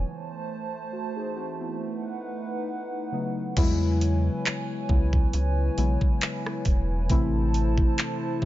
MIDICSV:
0, 0, Header, 1, 5, 480
1, 0, Start_track
1, 0, Key_signature, 4, "major"
1, 0, Tempo, 882353
1, 20, Time_signature, 4, 2, 24, 8
1, 4597, End_track
2, 0, Start_track
2, 0, Title_t, "Analog synth pad"
2, 0, Program_c, 0, 89
2, 0, Note_on_c, 0, 52, 69
2, 21, Note_on_c, 0, 57, 80
2, 21, Note_on_c, 0, 72, 75
2, 21, Note_on_c, 0, 81, 83
2, 960, Note_off_c, 0, 52, 0
2, 971, Note_off_c, 0, 72, 0
2, 971, Note_off_c, 0, 81, 0
2, 980, Note_on_c, 0, 63, 72
2, 980, Note_on_c, 0, 78, 81
2, 981, Note_on_c, 0, 71, 71
2, 1921, Note_off_c, 0, 57, 0
2, 1930, Note_off_c, 0, 63, 0
2, 1931, Note_off_c, 0, 71, 0
2, 1931, Note_off_c, 0, 78, 0
2, 1941, Note_on_c, 0, 71, 73
2, 1941, Note_on_c, 0, 73, 77
2, 1941, Note_on_c, 0, 80, 91
2, 1942, Note_on_c, 0, 64, 81
2, 3841, Note_off_c, 0, 71, 0
2, 3841, Note_off_c, 0, 73, 0
2, 3842, Note_off_c, 0, 80, 0
2, 3859, Note_on_c, 0, 72, 75
2, 3860, Note_on_c, 0, 69, 69
2, 3860, Note_on_c, 0, 81, 94
2, 4597, Note_off_c, 0, 64, 0
2, 4597, Note_off_c, 0, 69, 0
2, 4597, Note_off_c, 0, 72, 0
2, 4597, Note_off_c, 0, 81, 0
2, 4597, End_track
3, 0, Start_track
3, 0, Title_t, "Synth keys"
3, 0, Program_c, 1, 88
3, 0, Control_c, 1, 64, 127
3, 27, Control_c, 1, 64, 0
3, 106, Control_c, 1, 64, 127
3, 501, Note_on_c, 1, 72, 58
3, 504, Note_on_c, 1, 66, 51
3, 624, Note_off_c, 1, 72, 0
3, 625, Note_off_c, 1, 66, 0
3, 631, Note_on_c, 1, 68, 68
3, 633, Note_on_c, 1, 63, 56
3, 735, Note_off_c, 1, 68, 0
3, 737, Note_off_c, 1, 63, 0
3, 740, Note_on_c, 1, 66, 67
3, 744, Note_on_c, 1, 60, 56
3, 863, Note_off_c, 1, 66, 0
3, 865, Note_off_c, 1, 60, 0
3, 871, Note_on_c, 1, 64, 64
3, 874, Note_on_c, 1, 59, 54
3, 988, Control_c, 1, 64, 0
3, 1081, Control_c, 1, 64, 127
3, 1099, Note_off_c, 1, 64, 0
3, 1100, Note_off_c, 1, 59, 0
3, 1696, Note_on_c, 1, 49, 78
3, 1698, Note_on_c, 1, 54, 69
3, 1701, Note_on_c, 1, 57, 66
3, 1703, Note_on_c, 1, 59, 66
3, 1705, Note_on_c, 1, 63, 80
3, 1887, Note_off_c, 1, 49, 0
3, 1888, Note_off_c, 1, 54, 0
3, 1890, Note_off_c, 1, 57, 0
3, 1891, Note_off_c, 1, 59, 0
3, 1892, Note_off_c, 1, 63, 0
3, 1937, Note_on_c, 1, 49, 105
3, 1938, Note_on_c, 1, 54, 102
3, 1941, Note_on_c, 1, 55, 81
3, 1944, Note_on_c, 1, 59, 101
3, 1947, Control_c, 1, 64, 0
3, 1947, Note_on_c, 1, 64, 120
3, 1977, Note_on_c, 1, 56, 105
3, 1979, Note_off_c, 1, 55, 0
3, 2049, Control_c, 1, 64, 127
3, 2499, Note_off_c, 1, 49, 0
3, 2500, Note_off_c, 1, 54, 0
3, 2503, Note_off_c, 1, 59, 0
3, 2504, Note_off_c, 1, 64, 0
3, 2519, Note_off_c, 1, 56, 0
3, 2657, Note_on_c, 1, 49, 80
3, 2659, Note_on_c, 1, 54, 74
3, 2662, Note_on_c, 1, 56, 69
3, 2664, Note_on_c, 1, 59, 72
3, 2666, Note_on_c, 1, 64, 83
3, 3037, Note_off_c, 1, 49, 0
3, 3038, Note_off_c, 1, 54, 0
3, 3040, Note_off_c, 1, 56, 0
3, 3040, Note_off_c, 1, 59, 0
3, 3041, Note_off_c, 1, 64, 0
3, 3137, Note_on_c, 1, 49, 83
3, 3140, Note_on_c, 1, 54, 77
3, 3142, Note_on_c, 1, 56, 77
3, 3145, Note_on_c, 1, 59, 75
3, 3147, Note_on_c, 1, 64, 87
3, 3699, Note_off_c, 1, 49, 0
3, 3700, Note_off_c, 1, 54, 0
3, 3702, Note_off_c, 1, 56, 0
3, 3703, Note_off_c, 1, 59, 0
3, 3704, Note_off_c, 1, 64, 0
3, 3859, Note_on_c, 1, 48, 111
3, 3861, Note_on_c, 1, 52, 96
3, 3863, Note_on_c, 1, 57, 105
3, 3866, Note_on_c, 1, 60, 103
3, 3868, Control_c, 1, 64, 0
3, 3868, Note_on_c, 1, 64, 125
3, 3960, Control_c, 1, 64, 127
3, 4597, Note_off_c, 1, 48, 0
3, 4597, Note_off_c, 1, 52, 0
3, 4597, Note_off_c, 1, 57, 0
3, 4597, Note_off_c, 1, 60, 0
3, 4597, Note_off_c, 1, 64, 0
3, 4597, End_track
4, 0, Start_track
4, 0, Title_t, "Analog synth bass"
4, 0, Program_c, 2, 38
4, 1941, Note_on_c, 2, 40, 117
4, 2336, Note_off_c, 2, 40, 0
4, 2661, Note_on_c, 2, 37, 102
4, 2858, Note_off_c, 2, 37, 0
4, 2903, Note_on_c, 2, 37, 101
4, 3099, Note_off_c, 2, 37, 0
4, 3143, Note_on_c, 2, 35, 94
4, 3249, Note_off_c, 2, 35, 0
4, 3621, Note_on_c, 2, 28, 89
4, 3861, Note_on_c, 2, 33, 104
4, 3869, Note_off_c, 2, 28, 0
4, 4256, Note_off_c, 2, 33, 0
4, 4581, Note_on_c, 2, 36, 91
4, 4597, Note_off_c, 2, 36, 0
4, 4597, End_track
5, 0, Start_track
5, 0, Title_t, "Drums"
5, 1940, Note_on_c, 9, 42, 70
5, 1940, Note_on_c, 9, 49, 98
5, 1941, Note_on_c, 9, 36, 103
5, 1994, Note_off_c, 9, 42, 0
5, 1995, Note_off_c, 9, 36, 0
5, 1995, Note_off_c, 9, 49, 0
5, 2183, Note_on_c, 9, 42, 70
5, 2238, Note_off_c, 9, 42, 0
5, 2423, Note_on_c, 9, 42, 76
5, 2427, Note_on_c, 9, 39, 107
5, 2477, Note_off_c, 9, 42, 0
5, 2481, Note_off_c, 9, 39, 0
5, 2661, Note_on_c, 9, 36, 91
5, 2715, Note_off_c, 9, 36, 0
5, 2790, Note_on_c, 9, 36, 106
5, 2845, Note_off_c, 9, 36, 0
5, 2902, Note_on_c, 9, 42, 70
5, 2956, Note_off_c, 9, 42, 0
5, 3143, Note_on_c, 9, 42, 64
5, 3197, Note_off_c, 9, 42, 0
5, 3270, Note_on_c, 9, 36, 82
5, 3325, Note_off_c, 9, 36, 0
5, 3379, Note_on_c, 9, 42, 71
5, 3385, Note_on_c, 9, 39, 114
5, 3434, Note_off_c, 9, 42, 0
5, 3439, Note_off_c, 9, 39, 0
5, 3517, Note_on_c, 9, 37, 90
5, 3571, Note_off_c, 9, 37, 0
5, 3618, Note_on_c, 9, 42, 68
5, 3621, Note_on_c, 9, 36, 91
5, 3672, Note_off_c, 9, 42, 0
5, 3675, Note_off_c, 9, 36, 0
5, 3860, Note_on_c, 9, 42, 68
5, 3861, Note_on_c, 9, 36, 107
5, 3914, Note_off_c, 9, 42, 0
5, 3915, Note_off_c, 9, 36, 0
5, 4103, Note_on_c, 9, 42, 70
5, 4157, Note_off_c, 9, 42, 0
5, 4230, Note_on_c, 9, 36, 95
5, 4284, Note_off_c, 9, 36, 0
5, 4341, Note_on_c, 9, 42, 76
5, 4345, Note_on_c, 9, 39, 105
5, 4396, Note_off_c, 9, 42, 0
5, 4400, Note_off_c, 9, 39, 0
5, 4580, Note_on_c, 9, 36, 96
5, 4597, Note_off_c, 9, 36, 0
5, 4597, End_track
0, 0, End_of_file